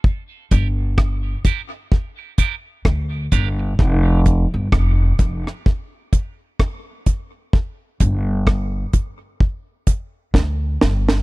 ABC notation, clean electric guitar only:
X:1
M:4/4
L:1/8
Q:"Swing 16ths" 1/4=64
K:Gm
V:1 name="Clean electric guitar"
z [DGB] z [DGB] z [DGB] z [DGB] | z8 | z8 |]